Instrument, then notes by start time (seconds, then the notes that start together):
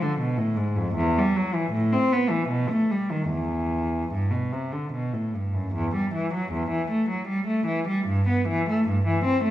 cello
0.02 D3
0.19 B2
0.38 A2
0.56 G#2
0.76 F2
0.95 E2
1.18 G3
1.36 F#3
1.55 E3
1.72 A2
1.93 C4
2.12 B3
2.30 E3
2.49 B2
2.69 A3
2.91 G3
3.10 D#3
3.30 E2
4.12 G2
4.31 B2
4.52 C3
4.72 D3
4.92 B2
5.13 A2
5.34 G2
5.54 F#2
5.74 E2
5.95 G3
6.14 E3
6.34 F#3
6.52 E2
6.70 E3
6.90 A3
7.09 F#3
7.27 G3
7.47 A3
7.66 E3
7.88 G3
8.07 G2
8.28 B3
8.48 E3
8.69 A3
8.88 G2
9.06 E3
9.24 C4
9.43 A3